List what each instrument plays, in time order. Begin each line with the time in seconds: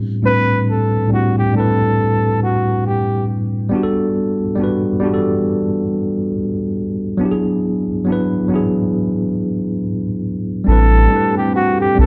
Already playing: tine electric piano A2 G3 B3 C4 D4 E4 G4
0.22 tine electric piano A2 G3 C4, flugelhorn B4
0.26 tine electric piano D4 E4 B4
0.70 flugelhorn A4
1.08 tine electric piano A2 G3 C4
1.13 tine electric piano D4 E4 G4, flugelhorn F#4
1.38 flugelhorn G4
1.52 tine electric piano A2 G3 C4
1.56 tine electric piano D4 E4 B4, flugelhorn A4
2.43 flugelhorn F#4
2.86 flugelhorn G4
3.69 tine electric piano G3 B3 D4
3.75 tine electric piano F#4 G4
3.83 tine electric piano A4
4.56 tine electric piano G3 B3
4.60 tine electric piano D4 F#4 B4
5.00 tine electric piano G3 B3 D4
5.05 tine electric piano F#4 G4
5.14 tine electric piano A4
7.17 tine electric piano F#3 B3 D4
7.23 tine electric piano E4 G4
7.31 tine electric piano G#4
8.04 tine electric piano F#3 B3 D4
8.10 tine electric piano E4 B4
8.48 tine electric piano F#3 B3 D4
8.54 tine electric piano E4 G#4
10.64 sub bass A1, tine electric piano G3 C4 D4, analog synth pad A3 C4 G4
10.68 tine electric piano E4 B4, flugelhorn A4
11.08 tine electric piano G3 C4 D4
11.14 tine electric piano E4 B4
11.37 flugelhorn G4
11.55 flugelhorn F#4
11.81 flugelhorn G4
11.95 sub bass B1, tine electric piano G3 C4 D4
11.99 tine electric piano E4 B4, flugelhorn A4